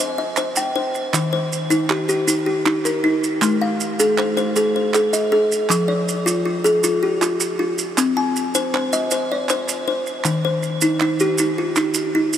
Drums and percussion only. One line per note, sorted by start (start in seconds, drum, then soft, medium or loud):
0.37 clap medium
0.37 maracas medium
0.56 clap soft
0.56 maracas medium
0.95 maracas medium
1.14 clap medium
1.14 maracas medium
1.53 maracas medium
1.71 maracas medium
1.90 clap medium
2.09 maracas medium
2.28 clap soft
2.28 maracas medium
2.66 clap medium
2.85 clap soft
2.85 maracas medium
3.24 maracas medium
3.42 clap medium
3.42 maracas medium
3.80 maracas medium
4.00 maracas medium
4.18 clap medium
4.37 clap soft
4.37 maracas medium
4.56 clap soft
4.56 maracas medium
4.94 clap medium
4.94 maracas medium
5.13 maracas medium
5.52 maracas medium
5.69 clap medium
5.69 maracas medium
6.08 maracas medium
6.27 maracas medium
6.65 maracas medium
6.84 clap soft
6.84 maracas medium
7.22 clap medium
7.22 maracas medium
7.40 clap soft
7.40 maracas medium
7.78 maracas medium
7.98 clap medium
7.98 maracas medium
8.36 maracas medium
8.55 maracas medium
8.75 clap medium
8.93 maracas medium
9.11 clap soft
9.11 maracas medium
9.49 clap medium
9.49 maracas medium
9.68 clap soft
9.68 maracas medium
10.06 maracas medium
10.24 clap medium
10.24 maracas medium
10.63 maracas medium
10.81 maracas medium
11.00 clap medium
11.20 maracas medium
11.38 clap soft
11.38 maracas medium
11.76 clap medium
11.76 maracas medium
11.94 clap soft
11.94 maracas medium
12.33 maracas medium